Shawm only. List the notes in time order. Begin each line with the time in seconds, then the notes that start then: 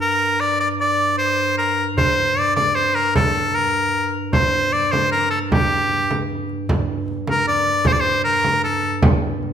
0.01 A#4
0.40 D5
0.60 D5
0.81 D5
1.18 C5
1.58 A#4
1.98 C5
2.39 D5
2.56 D5
2.75 C5
2.95 A#4
3.16 A4
3.55 A#4
4.33 C5
4.73 D5
4.91 C5
5.11 A#4
5.30 A4
5.52 G4
7.30 A#4
7.48 D5
7.87 C5
7.92 D5
8.00 C5
8.24 A#4
8.64 A4